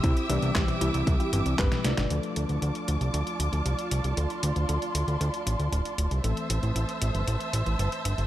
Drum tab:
HH |xxxxxxxxxxxxxxxx|xxxxxxxxxxxxxxxx|xxxxxxxxxxxxxxxx|xxxxxxxxxxxxxxxx|
CP |----x-------x---|----------------|----------------|----------------|
SD |----o-------oooo|----------------|----------------|----------------|
T1 |-----o-------o-o|----------------|----------------|----------------|
BD |o---o---o---o---|----------------|----------------|----------------|